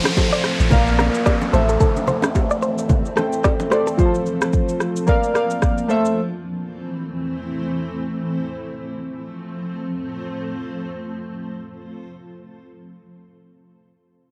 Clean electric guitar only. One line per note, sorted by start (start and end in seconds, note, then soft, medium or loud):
0.33 0.44 D5 medium
0.44 0.52 C5 medium
0.99 1.07 A#4 medium
1.26 1.34 D5 medium
1.53 1.62 C5 medium
1.69 1.75 A4 medium
1.81 1.89 A4 loud
2.08 2.16 C5 medium
2.51 2.57 D5 medium
2.63 2.71 C5 medium
3.17 3.25 A4 medium
3.44 3.52 D5 medium
3.71 3.80 C5 medium
3.87 3.93 A4 medium